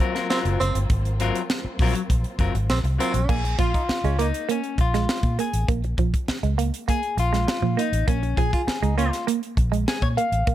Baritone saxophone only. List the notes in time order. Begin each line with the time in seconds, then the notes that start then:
0.30 C4
0.60 C4
2.70 C4
3.00 C4
3.59 F4
3.74 D#4
4.04 C#4
4.18 A#3
8.38 G#4
8.53 F4
8.82 D#4
8.98 C#4